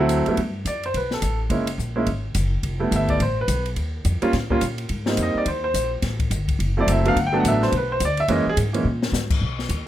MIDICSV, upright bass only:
0, 0, Header, 1, 3, 480
1, 0, Start_track
1, 0, Tempo, 282619
1, 637, Time_signature, 4, 2, 24, 8
1, 16772, End_track
2, 0, Start_track
2, 0, Title_t, "Upright bass"
2, 0, Program_c, 0, 32
2, 0, Note_on_c, 0, 38, 79
2, 392, Note_off_c, 0, 38, 0
2, 640, Note_on_c, 0, 43, 71
2, 1097, Note_off_c, 0, 43, 0
2, 1107, Note_on_c, 0, 42, 77
2, 1578, Note_off_c, 0, 42, 0
2, 1599, Note_on_c, 0, 35, 75
2, 2064, Note_off_c, 0, 35, 0
2, 2074, Note_on_c, 0, 33, 82
2, 2536, Note_off_c, 0, 33, 0
2, 2546, Note_on_c, 0, 30, 71
2, 3013, Note_off_c, 0, 30, 0
2, 3023, Note_on_c, 0, 34, 84
2, 3497, Note_off_c, 0, 34, 0
2, 3512, Note_on_c, 0, 32, 76
2, 3977, Note_off_c, 0, 32, 0
2, 3988, Note_on_c, 0, 30, 83
2, 4459, Note_off_c, 0, 30, 0
2, 4466, Note_on_c, 0, 29, 76
2, 4939, Note_off_c, 0, 29, 0
2, 4947, Note_on_c, 0, 31, 84
2, 5419, Note_off_c, 0, 31, 0
2, 5435, Note_on_c, 0, 33, 82
2, 5897, Note_off_c, 0, 33, 0
2, 5907, Note_on_c, 0, 35, 84
2, 6379, Note_off_c, 0, 35, 0
2, 6392, Note_on_c, 0, 39, 72
2, 6862, Note_off_c, 0, 39, 0
2, 6876, Note_on_c, 0, 41, 80
2, 7149, Note_off_c, 0, 41, 0
2, 7354, Note_on_c, 0, 45, 79
2, 7822, Note_off_c, 0, 45, 0
2, 7840, Note_on_c, 0, 46, 76
2, 8306, Note_off_c, 0, 46, 0
2, 8315, Note_on_c, 0, 44, 76
2, 8777, Note_off_c, 0, 44, 0
2, 8787, Note_on_c, 0, 41, 85
2, 9064, Note_off_c, 0, 41, 0
2, 9270, Note_on_c, 0, 39, 81
2, 9740, Note_off_c, 0, 39, 0
2, 9750, Note_on_c, 0, 34, 81
2, 10220, Note_off_c, 0, 34, 0
2, 10231, Note_on_c, 0, 33, 74
2, 10700, Note_off_c, 0, 33, 0
2, 10709, Note_on_c, 0, 31, 87
2, 11179, Note_off_c, 0, 31, 0
2, 11190, Note_on_c, 0, 30, 77
2, 11659, Note_off_c, 0, 30, 0
2, 11672, Note_on_c, 0, 30, 85
2, 12140, Note_off_c, 0, 30, 0
2, 12159, Note_on_c, 0, 31, 80
2, 12623, Note_off_c, 0, 31, 0
2, 12637, Note_on_c, 0, 33, 89
2, 13102, Note_off_c, 0, 33, 0
2, 13114, Note_on_c, 0, 35, 85
2, 13580, Note_off_c, 0, 35, 0
2, 13593, Note_on_c, 0, 38, 84
2, 14056, Note_off_c, 0, 38, 0
2, 14066, Note_on_c, 0, 42, 82
2, 14341, Note_off_c, 0, 42, 0
2, 14552, Note_on_c, 0, 44, 93
2, 15015, Note_off_c, 0, 44, 0
2, 15025, Note_on_c, 0, 46, 84
2, 15483, Note_off_c, 0, 46, 0
2, 15493, Note_on_c, 0, 44, 89
2, 15969, Note_off_c, 0, 44, 0
2, 15989, Note_on_c, 0, 35, 77
2, 16450, Note_off_c, 0, 35, 0
2, 16460, Note_on_c, 0, 39, 83
2, 16737, Note_off_c, 0, 39, 0
2, 16772, End_track
3, 0, Start_track
3, 0, Title_t, "Muted upright bass strokes"
3, 467, Note_on_c, 9, 29, 40
3, 637, Note_off_c, 9, 29, 0
3, 7175, Note_on_c, 9, 29, 37
3, 7344, Note_off_c, 9, 29, 0
3, 9084, Note_on_c, 9, 29, 41
3, 9254, Note_off_c, 9, 29, 0
3, 14368, Note_on_c, 9, 29, 41
3, 14537, Note_off_c, 9, 29, 0
3, 16772, End_track
0, 0, End_of_file